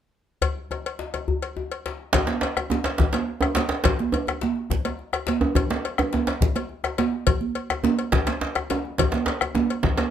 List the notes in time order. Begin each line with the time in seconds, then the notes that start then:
0.42 cowbell, djembe slap, djembe bass
0.71 cowbell, djembe tone
0.86 cowbell
0.99 djembe slap
1.14 cowbell, djembe tone
1.28 djembe bass
1.43 cowbell
1.57 djembe tone
1.72 cowbell
1.86 cowbell, djembe slap
2.13 bombo low, cowbell, djembe slap, low conga, djembe bass
2.27 djembe slap, high conga
2.41 cowbell, djembe slap
2.57 bombo rim, cowbell, djembe tone, high conga
2.70 bombo rim, djembe slap, djembe tone, high conga
2.84 cowbell, djembe slap
2.86 djembe slap
2.98 bombo rim, bombo low, djembe slap, low conga
3.00 djembe slap, djembe bass
3.13 bombo rim, cowbell, djembe slap, high conga
3.28 djembe slap
3.41 djembe tone
3.42 bombo rim, cowbell, djembe tone
3.55 cowbell, djembe slap, high conga
3.69 djembe slap
3.71 djembe slap
3.84 bombo low, cowbell, djembe slap, djembe bass, low conga
3.99 djembe slap, high conga
4.12 cowbell, djembe tone
4.27 bombo rim, cowbell, djembe tone, high conga
4.41 bombo rim, djembe slap, high conga
4.56 djembe slap
4.70 bombo rim, bombo low, djembe slap, djembe bass, low conga
4.85 bombo rim, cowbell, djembe slap, high conga
4.99 djembe slap
5.13 bombo rim, cowbell, djembe tone
5.27 bombo rim, cowbell, djembe slap, high conga
5.41 djembe tone
5.55 bombo low, cowbell, djembe tone, djembe bass, low conga
5.70 djembe slap, high conga
5.85 cowbell
5.98 bombo rim, cowbell, djembe tone, high conga
6.13 bombo rim, djembe slap, high conga, djembe tone
6.27 cowbell, djembe slap
6.41 bombo rim, bombo low, djembe slap, low conga, djembe bass
6.56 bombo rim, cowbell, djembe slap, high conga
6.69 djembe slap
6.84 bombo rim, cowbell, djembe tone
6.98 bombo rim, cowbell, djembe slap, high conga
7.12 djembe slap
7.27 bombo low, cowbell, low conga, djembe bass
7.41 high conga
7.55 cowbell
7.70 bombo rim, cowbell, djembe slap, high conga, djembe tone
7.83 djembe slap, djembe tone, high conga
7.99 cowbell, djembe slap
8.12 bombo rim, bombo low, djembe slap, djembe bass, low conga
8.27 cowbell, djembe slap, high conga
8.41 djembe slap
8.55 bombo rim, cowbell, djembe slap, djembe tone
8.70 bombo rim, cowbell, djembe slap, djembe tone
8.85 djembe slap, high conga
8.98 bombo low, cowbell, djembe slap, djembe bass, low conga
9.12 djembe slap, high conga
9.14 djembe slap
9.26 cowbell, djembe slap
9.41 bombo rim, cowbell, djembe tone, high conga
9.55 bombo rim, djembe slap, djembe tone, high conga
9.70 cowbell, djembe slap
9.83 bombo rim, bombo low, djembe slap, djembe bass, low conga
9.97 bombo rim, cowbell, djembe slap, high conga